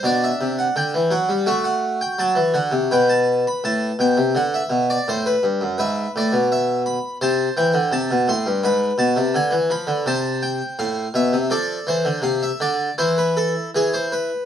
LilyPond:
<<
  \new Staff \with { instrumentName = "Harpsichord" } { \time 4/4 \key g \major \tempo 4 = 83 << { d''16 e''8 fis''16 g''8 fis''8 e''16 fis''8 g''16 a''8 fis''8 | g''16 a''8 b''16 a''8 g''8 fis''16 e''8 d''16 c''16 b'16 r8 | \key a \minor e''8 d''8 e''8 b''8 a''8 g''8 a''8 c'''8 | b''8 a''8 gis''8 b''8 a''8 g''8 f''8 e''8 |
d''8 c''8 f''16 e''16 d''8 c''16 b'16 a'8 gis'16 c''16 b'8 | } \\ { d'2 fis'2 | b'1 | b'2 c''2 | b'2 c''2 |
a'2 e'4 r4 | } >> }
  \new Staff \with { instrumentName = "Harpsichord" } { \clef bass \time 4/4 \key g \major b,8 c8 d16 e16 fis16 g16 a4 fis16 e16 d16 c16 | b,4 a,8 b,16 c16 d8 b,8 a,8 g,16 fis,16 | \key a \minor gis,8 a,16 b,4~ b,16 c8 e16 d16 c16 b,16 a,16 g,16 | gis,8 b,16 c16 d16 e16 eis16 d16 c4 a,8 b,16 c16 |
f8 e16 d16 c8 d8 e4 e4 | }
>>